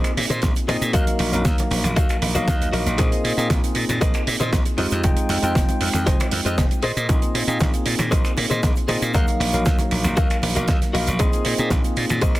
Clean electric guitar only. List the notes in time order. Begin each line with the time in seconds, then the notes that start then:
Already playing: G#4 A#4 C5 D#5
0.30 G#4 A#4 C5 D#5
0.68 G#4 A#4 C5 D#5
0.93 F#4 A#4 D#5 F5
1.96 F#4 A#4 D#5 F5
2.35 F#4 A#4 D#5 F5
2.72 F#4 A#4 D#5 F5
2.98 G#4 A#4 C5 D#5
4.01 G#4 A#4 C5 D#5
4.40 G#4 A#4 C5 D#5
4.78 F4 G#4 C5 D#5
6.06 F4 G#4 C5 D#5
6.45 F4 G#4 C5 D#5
6.83 G#4 A#4 C5 D#5
8.11 G#4 A#4 C5 D#5
8.50 G#4 A#4 C5 D#5
8.88 G#4 A#4 C5 D#5
9.14 F#4 A#4 D#5 F5
10.17 F#4 A#4 D#5 F5
10.55 F#4 A#4 D#5 F5
10.93 F#4 A#4 D#5 F5
11.19 G#4 A#4 C5 D#5
12.21 G#4 A#4 C5 D#5